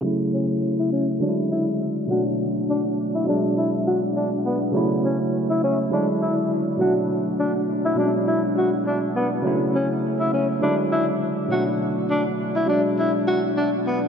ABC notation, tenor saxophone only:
X:1
M:4/4
L:1/16
Q:"Swing 16ths" 1/4=102
K:F#m
V:1 name="Tenor saxophone"
z2 C z2 E C z D z E z3 F z | z2 D z2 E D z E z F z D z B, z | z2 C z2 E C z D z E z3 F z | z2 D z2 E D z E z F z D z B, z |
z2 C z2 E C z D z E z3 F z | z2 D z2 E D z E z F z D z B, z |]